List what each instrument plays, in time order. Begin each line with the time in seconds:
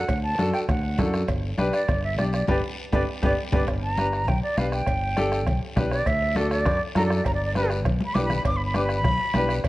Already playing: flute F#5
0.08 fingered electric bass D2, bombo low, bombo rim, cowbell, high conga, long guiro
0.23 flute A5
0.38 fingered electric bass F#2, upright piano D4 F#4 A4, bombo rim, high conga, short guiro
0.54 flute G5, bombo rim, short guiro
0.68 fingered electric bass D2, flute F#5, bombo low, bombo rim, cowbell, high conga, low conga, long guiro
0.98 fingered electric bass F#2, upright piano D4 F#4 A4, bombo low, bombo rim, high conga, low conga, low timbale, short guiro
1.14 bombo rim, short guiro
1.28 fingered electric bass G1, bombo low, bombo rim, cowbell, high conga, long guiro
1.58 fingered electric bass B1, upright piano D4 G4 B4, bombo rim, high conga, short guiro
1.73 flute D5, bombo rim, short guiro
1.88 fingered electric bass G1, bombo low, bombo rim, cowbell, high conga, low conga, long guiro
2.04 flute E5
2.18 fingered electric bass B1, upright piano D4 G4 D5, flute D5, bombo rim, high conga, short guiro
2.33 flute D5, bombo rim, short guiro
2.47 fingered electric bass G1, upright piano D4 G4 B4, flute D5, bombo low, high conga, high timbale, long guiro
2.92 fingered electric bass G1, upright piano D4 G4 B4, flute D5, bombo low, high conga, high timbale, long guiro
3.22 fingered electric bass G1, upright piano D4 G4 B4, flute D5, bombo low, high conga, high timbale, long guiro
3.52 fingered electric bass G1, upright piano D4 G4 B4, flute D5, bombo low, high conga, high timbale, long guiro
3.68 fingered electric bass G1, bombo low, bombo rim, cowbell, high conga, long guiro
3.83 flute A#5
3.97 upright piano D4 G4 B4, bombo rim, high conga, short guiro
4.12 bombo rim, short guiro
4.28 fingered electric bass B1, flute G5, bombo low, bombo rim, cowbell, high conga, low conga, long guiro
4.43 flute D5
4.57 fingered electric bass B1, upright piano D4 G4 B4, flute F5, bombo rim, high conga, short guiro
4.72 flute G5, bombo rim, short guiro
4.87 fingered electric bass G1, bombo low, bombo rim, cowbell, high conga, long guiro
5.17 upright piano D4 G4 A4, bombo rim, high conga, short guiro
5.32 bombo rim, short guiro
5.46 fingered electric bass B1, bombo low, bombo rim, cowbell, high conga, low conga, long guiro
5.76 fingered electric bass B1, upright piano D4 G4 B4, bombo low, bombo rim, high conga, low conga, low timbale, short guiro
5.92 flute D5, bombo rim, short guiro
6.06 fingered electric bass D2, flute E5, bombo low, bombo rim, cowbell, high conga, long guiro
6.36 upright piano D4 F#4 A4, flute D5, bombo rim, high conga, short guiro
6.51 flute D5, bombo rim, short guiro
6.66 fingered electric bass F#2, bombo low, bombo rim, cowbell, high conga, low conga, long guiro
6.95 fingered electric bass F#2, upright piano D4 F#4 A4, flute A#5, bombo rim, high conga, low timbale, short guiro
7.06 flute D5
7.10 bombo rim, short guiro
7.16 flute D5
7.25 fingered electric bass G1, flute A#5, bombo low, bombo rim, cowbell, high conga, long guiro
7.34 flute D5
7.45 flute D5
7.55 upright piano D4 G4 B4, flute B4, bombo rim, high conga, short guiro
7.70 bombo rim, short guiro
7.85 fingered electric bass B1, bombo low, bombo rim, cowbell, high conga, low conga, long guiro
8.00 high conga
8.06 flute B5
8.14 fingered electric bass B1, upright piano D4 G4 B4, flute D6, bombo rim, high conga, low timbale, short guiro
8.25 flute B5
8.30 bombo rim, low conga, short guiro
8.36 flute B5
8.45 fingered electric bass G1, flute D6, bombo low, bombo rim, cowbell, high conga, long guiro
8.57 flute B5
8.66 flute B5
8.74 upright piano D4 G4 B4, flute D6, bombo rim, high conga, short guiro
8.85 flute B5
8.89 bombo rim, short guiro
8.96 flute B5
9.04 fingered electric bass B1, bombo low, bombo rim, cowbell, high conga, low conga, long guiro
9.34 fingered electric bass B1, upright piano D4 G4 B4, bombo rim, high conga, low timbale, short guiro
9.49 bombo rim, short guiro
9.64 fingered electric bass G1, bombo low, bombo rim, cowbell, high conga, long guiro